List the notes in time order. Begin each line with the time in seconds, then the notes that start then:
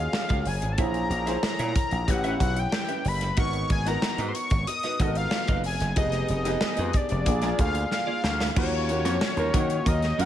Already playing: C#4 D#4 F4 F#4 G#4 A#4
0.00 F5
0.13 muted clean electric guitar stroke, snare
0.29 C#2 C#4 F#4 A#4 F5, kick, closed hi-hat
0.45 F#1 G#5, muted clean electric guitar stroke, open hi-hat
0.62 G#1, muted clean electric guitar stroke, closed hi-hat
0.72 A5
0.78 A#1 C#4 E4 G#4 C5 C#5 E5 A#5, kick, closed hi-hat
0.94 closed hi-hat
1.10 A#1, muted clean electric guitar stroke, closed hi-hat
1.26 C#4 E4 G#4 C5 C#5 E5, snare, closed hi-hat
1.43 A#5, muted slap bass stroke, snare
1.59 A#2 E4 G#4 C#5 E5, closed hi-hat
1.76 kick, closed hi-hat
1.91 A#1, muted clean electric guitar stroke, closed hi-hat
2.08 A1 C#4 E4 G4 B4 F#5, muted clean electric guitar stroke, kick, closed hi-hat
2.24 C#4 E4 G4 B4 E5, closed hi-hat
2.40 B1 F#5, muted clean electric guitar stroke, kick, closed hi-hat
2.57 G5, muted clean electric guitar stroke, closed hi-hat
2.72 muted clean electric guitar stroke, snare
2.88 C#4 G4 B4 E5, closed hi-hat
3.05 F#1 B5, muted clean electric guitar stroke, open hi-hat
3.21 muted clean electric guitar stroke, snare, closed hi-hat
3.36 G#1 B3 D#4 F#4 A#4 B4 D#5 C#6, kick, closed hi-hat
3.53 closed hi-hat
3.70 G#1 G#5, muted clean electric guitar stroke, kick, closed hi-hat
3.86 B3 D#4 F#4 A#4 B4 D#5 A#5, snare, closed hi-hat
4.02 muted clean electric guitar stroke, snare
4.18 G#2 D#4 F#4 B4 D#5, closed hi-hat
4.28 C6
4.35 C#6, muted clean electric guitar stroke, closed hi-hat
4.50 G#1, muted clean electric guitar stroke, kick, closed hi-hat
4.67 D#6, muted clean electric guitar stroke, closed hi-hat
4.83 D#4 F#4 B4 D#5, snare, closed hi-hat
4.99 G#1 B3 D#4 F#4 A4 D#5, kick, closed hi-hat
5.07 A#4
5.15 F5, muted clean electric guitar stroke, closed hi-hat
5.31 muted clean electric guitar stroke, snare
5.47 F#1 D#4 F#4 B4 D#5, kick, closed hi-hat
5.64 F1 G#5, muted clean electric guitar stroke, open hi-hat
5.80 F#1, muted clean electric guitar stroke, snare, closed hi-hat
5.96 F1 B3 D#4 G4 G#4 B4 D#5, kick, closed hi-hat
6.12 snare, closed hi-hat
6.28 F1 D#5, muted clean electric guitar stroke, closed hi-hat
6.45 B3 D#4 G4 G#4 B4 D#5, snare, closed hi-hat
6.61 muted slap bass stroke, snare
6.77 F2 D#4 G#4 B4 D#5, closed hi-hat
6.93 D5, muted clean electric guitar stroke, kick, closed hi-hat
7.09 F1, muted clean electric guitar stroke, closed hi-hat
7.26 A#1 A#3 D4 F4 G#4, muted clean electric guitar stroke, kick, closed hi-hat
7.42 A#3 D4 F4 G#4 D5, snare, closed hi-hat
7.59 D2 F5, muted clean electric guitar stroke, kick, closed hi-hat
7.75 muted clean electric guitar stroke, closed hi-hat
7.91 F5, muted clean electric guitar stroke, snare
8.07 A#3 F4 G#4 D5
8.23 D2, muted clean electric guitar stroke, snare
8.40 muted clean electric guitar stroke, snare
8.56 D#2 F#3 A#3 C#4 F4 F#4 A#4 C#5, kick, crash
8.73 muted clean electric guitar stroke
8.89 A#3 C#4 F4 F#4, muted clean electric guitar stroke, closed hi-hat
9.05 F2 F#3 C#4 F4 A#4, snare, closed hi-hat
9.21 snare
9.37 D#2 F#3 A#3 F4 A#4, muted clean electric guitar stroke, closed hi-hat
9.53 D#3 F#3 A#3 C#4 D#4 F4 F#4 A#4, kick, closed hi-hat
9.70 muted clean electric guitar stroke, closed hi-hat
9.85 D#2 F#3 A#3 F4 A#4 D#5, kick, closed hi-hat
10.02 muted clean electric guitar stroke, snare, closed hi-hat
10.18 F#2 F#3 A#3 C#4 F4 A#4 F#5, closed hi-hat